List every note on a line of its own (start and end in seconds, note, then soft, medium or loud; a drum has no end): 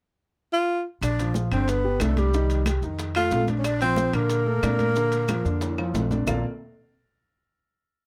0.53 0.84 F4 loud
1.01 1.48 A#1 medium
1.01 1.33 D4 medium
1.01 1.33 D5 medium
1.01 high bongo medium
1.01 high conga soft
1.01 high timbale medium
1.01 claves medium
1.01 maracas medium
1.18 1.46 F3 medium
1.18 1.46 F4 medium
1.18 high conga soft
1.18 high timbale medium
1.18 maracas soft
1.34 high bongo medium
1.34 high conga medium
1.34 low timbale medium
1.34 maracas medium
1.52 1.97 G1 medium
1.52 1.79 D3 medium
1.52 1.71 C4 medium
1.52 1.79 D4 medium
1.52 1.70 C5 medium
1.52 high timbale medium
1.52 claves medium
1.52 maracas soft
1.68 2.03 B3 medium
1.68 2.03 B4 medium
1.68 high bongo medium
1.68 high conga soft
1.68 high timbale medium
1.68 maracas medium
1.84 1.98 G3 medium
1.84 1.98 G4 medium
1.84 high conga soft
2.00 2.77 C2 medium
2.00 2.21 A3 medium
2.00 2.28 D4 medium
2.00 2.19 A4 medium
2.00 2.28 D5 medium
2.00 high bongo medium
2.00 low bongo medium
2.00 high conga medium
2.00 high timbale medium
2.00 low timbale medium
2.00 claves medium
2.00 maracas medium
2.17 2.68 G3 medium
2.17 2.67 G4 medium
2.17 high conga medium
2.17 high timbale medium
2.17 maracas soft
2.33 2.61 D#3 medium
2.33 2.61 D#4 medium
2.33 high bongo medium
2.33 high conga soft
2.33 maracas medium
2.50 high conga soft
2.50 high timbale medium
2.50 maracas medium
2.66 2.80 G3 medium
2.66 2.80 G4 medium
2.66 high bongo medium
2.66 high conga medium
2.66 high timbale medium
2.66 low timbale medium
2.66 claves medium
2.66 maracas medium
2.82 3.28 F2 medium
2.82 3.10 D#3 medium
2.82 3.10 D#4 medium
2.82 high bongo soft
2.82 high conga soft
2.82 maracas soft
2.99 high bongo medium
2.99 high conga soft
2.99 high timbale medium
2.99 maracas medium
3.15 3.43 A3 medium
3.15 3.46 F4 loud
3.15 3.43 A4 medium
3.15 3.47 F5 medium
3.15 high conga soft
3.15 high timbale medium
3.15 claves medium
3.31 4.08 A#1 medium
3.31 high bongo medium
3.31 low bongo medium
3.31 high conga medium
3.31 low timbale medium
3.31 maracas medium
3.48 3.76 D4 medium
3.48 3.76 D5 medium
3.48 high bongo soft
3.48 high conga medium
3.48 high timbale medium
3.48 maracas soft
3.59 3.67 C#4 medium
3.59 3.66 C#5 medium
3.64 3.81 D4 medium
3.64 3.81 D5 medium
3.64 high bongo medium
3.64 high timbale medium
3.64 claves medium
3.64 maracas medium
3.81 4.08 F3 medium
3.81 4.16 C4 medium
3.81 4.09 F4 medium
3.81 4.16 C5 medium
3.81 high conga soft
3.81 high timbale medium
3.81 maracas soft
3.96 high bongo medium
3.96 high conga medium
3.96 low timbale medium
3.96 maracas medium
4.13 4.59 A#2 medium
4.13 4.40 D3 medium
4.13 5.95 A#3 medium
4.13 4.41 D4 medium
4.13 5.95 A#4 medium
4.13 high timbale medium
4.13 claves medium
4.13 maracas soft
4.30 high bongo medium
4.30 high conga soft
4.30 high timbale medium
4.30 maracas medium
4.46 4.60 A3 medium
4.46 4.60 A4 medium
4.46 high conga soft
4.63 5.39 A#2 medium
4.63 4.90 D4 medium
4.63 4.90 D5 medium
4.63 high bongo medium
4.63 low bongo medium
4.63 high conga medium
4.63 high timbale medium
4.63 low timbale medium
4.63 claves medium
4.63 maracas medium
4.79 high conga medium
4.79 high timbale medium
4.79 maracas soft
4.96 5.23 D3 medium
4.96 5.23 D4 medium
4.96 high bongo medium
4.96 high conga soft
4.96 maracas medium
5.12 high conga soft
5.12 high timbale medium
5.12 maracas soft
5.28 5.42 F3 medium
5.28 5.42 F4 medium
5.28 high bongo medium
5.28 high conga medium
5.28 high timbale medium
5.28 low timbale medium
5.28 claves medium
5.28 maracas medium
5.45 5.91 F2 medium
5.45 5.72 D3 medium
5.45 5.72 D4 medium
5.45 high bongo soft
5.45 high conga soft
5.45 maracas soft
5.61 high bongo medium
5.61 high conga soft
5.61 high timbale medium
5.61 maracas medium
5.78 6.05 F3 medium
5.78 6.05 F4 medium
5.78 high bongo soft
5.78 high conga soft
5.78 high timbale medium
5.78 claves medium
5.94 6.23 A#1 medium
5.94 high bongo medium
5.94 low bongo medium
5.94 high conga medium
5.94 low timbale medium
5.94 maracas medium
6.11 6.24 D4 medium
6.11 6.24 D5 medium
6.11 high bongo soft
6.11 high conga medium
6.11 low timbale medium
6.11 maracas soft
6.27 6.42 A#1 medium
6.27 6.42 A#3 medium
6.27 6.42 F4 medium
6.27 6.42 A4 medium
6.27 6.43 A#4 medium
6.27 6.43 D5 medium
6.27 6.43 F5 medium
6.27 low bongo medium
6.27 low conga medium
6.27 low timbale medium
6.27 claves loud
6.27 maracas medium